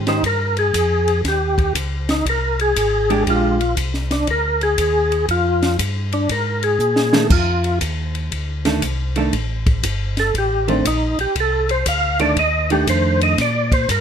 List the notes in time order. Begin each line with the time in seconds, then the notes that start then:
Already playing: G#2
0.07 D#3 C#4 D#4 G4 C5, snare, ride
0.23 G2 A#4, kick, ride
0.57 G#4, ride
0.74 F2, kick, hi-hat pedal, ride
1.08 ride
1.24 D#2 G4, kick, snare, ride
1.58 kick, ride
1.75 C#2, kick, hi-hat pedal, ride
2.09 D#4, snare, ride
2.25 C2 A#4, kick, ride
2.59 G#4, ride
2.76 G#1, kick, hi-hat pedal, ride
3.10 G#3 D4 G4, ride
3.27 A#1 G#3 D4 F4 G4, kick, ride
3.61 ride
3.77 C2, kick, hi-hat pedal, ride
3.94 snare
4.11 D4, snare, ride
4.27 D2 A#4, kick, ride
4.61 G#4, ride
4.78 D#2, kick, hi-hat pedal, ride
5.12 ride
5.29 F2 F4, kick, ride
5.62 snare, ride
5.79 G2, kick, hi-hat pedal, ride
6.12 D4, ride
6.29 G#2 A#4, kick, ride
6.63 G#4, ride
6.79 A#2, hi-hat pedal
6.96 snare
7.13 D#3 A3 D4, snare
7.30 F2 F4, kick, crash
7.64 ride
7.81 D#2, kick, hi-hat pedal, ride
8.15 ride
8.31 D2, kick, ride
8.65 D#3 A3 D4, snare, ride
8.82 C2, kick, hi-hat pedal, ride
9.16 D#3 A3 D4, ride
9.33 A1, kick, ride
9.66 kick, ride
9.83 G1, kick, hi-hat pedal, ride
10.17 A4, snare, ride
10.34 A1 G4, kick, ride
10.68 D#3 A3 C4 D4, ride
10.85 A#1 D#4, kick, hi-hat pedal, ride
11.18 A#1 G4, ride
11.35 C2, kick, ride
11.40 A4
11.69 C5, ride
11.86 D2 F5, kick, hi-hat pedal, ride
12.19 D#3 A3 D4 D5, ride
12.36 D#2 D#5, kick, ride
12.70 D#3 A3 D4 G4, ride
12.87 F2 C5, kick, hi-hat pedal, ride
13.21 D#5, ride
13.38 A#2 D5, kick, snare, ride
13.72 C5, kick, ride
13.89 G2 A#4, kick, hi-hat pedal, ride